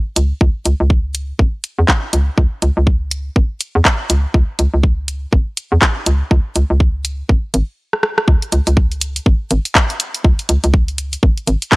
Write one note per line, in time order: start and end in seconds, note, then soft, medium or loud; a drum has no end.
0.16 0.33 C#2 medium
0.16 closed hi-hat loud
0.41 0.50 C#2 medium
0.41 kick loud
0.65 0.74 C#2 medium
0.65 closed hi-hat medium
0.80 1.33 C#2 medium
0.90 kick loud
1.15 closed hi-hat medium
1.39 1.48 G#1 medium
1.39 kick loud
1.64 closed hi-hat medium
1.79 1.84 E2 medium
1.88 kick loud
1.88 clap medium
2.13 2.30 C#2 medium
2.13 closed hi-hat medium
2.38 2.46 C#2 medium
2.38 kick loud
2.62 2.71 C#2 medium
2.62 closed hi-hat medium
2.77 3.30 C#2 medium
2.87 kick medium
3.11 closed hi-hat medium
3.36 3.45 G#1 medium
3.36 kick loud
3.61 closed hi-hat medium
3.75 3.81 E2 medium
3.85 kick loud
3.85 clap loud
4.10 4.26 C#2 medium
4.10 closed hi-hat medium
4.34 4.43 C#2 medium
4.34 kick loud
4.59 4.68 C#2 medium
4.59 closed hi-hat medium
4.74 5.26 C#2 medium
4.83 kick medium
5.08 closed hi-hat medium
5.33 5.42 G#1 medium
5.33 kick loud
5.57 closed hi-hat medium
5.72 5.78 E2 medium
5.82 kick loud
5.82 clap loud
6.06 6.23 C#2 medium
6.06 closed hi-hat medium
6.31 6.40 C#2 loud
6.31 kick loud
6.56 6.64 C#2 medium
6.56 closed hi-hat medium
6.70 7.23 C#2 medium
6.80 kick loud
7.05 closed hi-hat medium
7.29 7.38 G#1 medium
7.29 kick loud
7.54 7.63 G#1 medium
7.54 closed hi-hat medium
7.93 cross-stick medium
8.03 cross-stick medium
8.18 cross-stick medium
8.28 8.37 C#2 medium
8.28 kick loud
8.42 closed hi-hat soft
8.52 8.61 C#2 medium
8.52 closed hi-hat medium
8.67 9.20 C#2 medium
8.67 closed hi-hat medium
8.77 kick loud
8.92 closed hi-hat soft
9.01 closed hi-hat medium
9.16 closed hi-hat medium
9.26 9.35 G#1 medium
9.26 kick loud
9.51 9.60 G#1 medium
9.51 closed hi-hat medium
9.65 closed hi-hat soft
9.75 kick loud
9.75 clap loud
9.90 closed hi-hat soft
10.00 closed hi-hat loud
10.14 closed hi-hat medium
10.24 10.33 C#2 medium
10.24 kick loud
10.39 closed hi-hat soft
10.49 10.58 C#2 medium
10.49 closed hi-hat loud
10.64 11.17 C#2 medium
10.64 closed hi-hat soft
10.74 kick loud
10.88 closed hi-hat soft
10.98 closed hi-hat loud
11.13 closed hi-hat medium
11.23 11.32 G#1 medium
11.23 kick loud
11.37 closed hi-hat soft
11.47 11.56 G#1 medium
11.47 closed hi-hat medium
11.62 closed hi-hat medium
11.72 kick loud
11.72 clap loud